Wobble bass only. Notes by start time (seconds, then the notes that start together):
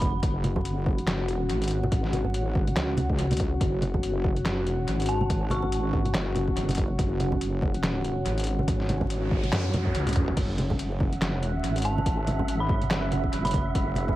Already playing: F#1
0.23 F#1
1.11 F1
1.36 E1
1.50 G#1
2.76 C#2
3.61 F#1
4.49 F1
4.74 E1
4.88 G#1
6.14 F#1
6.57 F#1
6.99 F#1
8.26 G#1
9.52 F#2
9.95 C#2
10.37 F#1
11.25 F1
11.50 E1
11.64 G#1
12.91 F#1
13.33 F#1
13.75 F#1